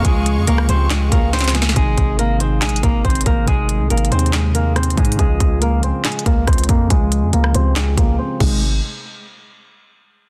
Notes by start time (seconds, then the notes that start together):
Already playing: C#3 F3 G#3 F4 G#4 F5 C#6
0.02 C#2 C#3 F3 G#3 G#4, kick, closed hi-hat
0.06 F4 G#4
0.26 closed hi-hat
0.37 F2
0.47 C#2 A#3 A#4, closed hi-hat
0.58 cross-stick
0.66 C#2 C#3 F3 G#3 C4 C5, closed hi-hat
0.70 F4 G4
0.90 G#3 G#4, snare, clap, closed hi-hat
1.09 C#2 C#3 F3 G#3 A#3 A#4, kick, closed hi-hat
1.13 F4 G#4
1.33 C4 C5, snare, closed hi-hat
1.39 snare, closed hi-hat
1.44 snare, closed hi-hat
1.49 C#3 F3, closed hi-hat
1.54 G#3 F4 G#4, snare, closed hi-hat
1.62 snare
1.69 snare
1.73 G#1 C3 D#3 G#3 G#4, kick, closed hi-hat
1.77 G#3 D#4 G#4
1.98 G#1, kick, closed hi-hat
2.19 A#3 A#4, closed hi-hat
2.37 C3 D#3 G#3 C4 C5, closed hi-hat
2.42 D#4 G#4
2.62 A#1 G#3 G#4, snare, clap, closed hi-hat
2.69 G#1, closed hi-hat
2.76 closed hi-hat
2.83 G#1 A#3 A#4, kick, closed hi-hat
3.04 G#1 C4 C5, kick, closed hi-hat
3.10 closed hi-hat
3.15 closed hi-hat
3.21 closed hi-hat
3.26 G#1 A#3 A#4, kick, closed hi-hat
3.44 G#1 C3 D#3 G#3 G#4, kick, closed hi-hat
3.48 G#3 D#4 G#4
3.69 closed hi-hat
3.80 C2
3.90 G#1 A#3 A#4, closed hi-hat
3.98 closed hi-hat
4.05 closed hi-hat
4.09 D#2 C3 D#3 G#3 C4 C5, closed hi-hat
4.13 D#4 G#4
4.19 closed hi-hat
4.26 closed hi-hat
4.33 G#3 G#4, snare, clap, closed hi-hat
4.52 C3 D#3 G#3 A#3 A#4, closed hi-hat
4.56 D#4 G#4
4.76 C4 C5, cross-stick, closed hi-hat
4.83 closed hi-hat
4.90 closed hi-hat
4.95 G#2 C3 D#3 G#3 G#4, kick, closed hi-hat
4.99 D#4 G#4
5.05 closed hi-hat
5.12 closed hi-hat
5.16 C#2 C#3 F3 G#3 G#4, kick, closed hi-hat
5.20 G#3 F4 G#4
5.40 C#2, kick, closed hi-hat
5.62 A#3 A#4, closed hi-hat
5.80 C#3 F3 G#3 C4 C5, closed hi-hat
5.85 F4 G#4
6.05 G#3 G#4, snare, clap, closed hi-hat
6.12 closed hi-hat
6.19 closed hi-hat
6.26 C#2 A#3 A#4, kick, closed hi-hat
6.47 C#2 C4 C5, kick, cross-stick, closed hi-hat
6.53 closed hi-hat
6.58 closed hi-hat
6.64 closed hi-hat
6.69 F2 A#3 A#4, kick, closed hi-hat
6.88 C#2 C#3 F3 G#3 G#4, kick, closed hi-hat
6.92 F4 G#4
7.12 closed hi-hat
7.23 F2
7.33 C#2 A#3 A#4, closed hi-hat
7.44 cross-stick
7.52 C#2 C#3 F3 G#3 C4 C5, closed hi-hat
7.56 F4 G4
7.76 G#3 G#4, snare, clap, closed hi-hat
7.95 C#2 C#3 F3 G#3 A#3 A#4, kick, closed hi-hat
7.99 F4 G#4
8.19 C4 C5
8.40 G#1 C3 G#3 D#4 G#4, kick, crash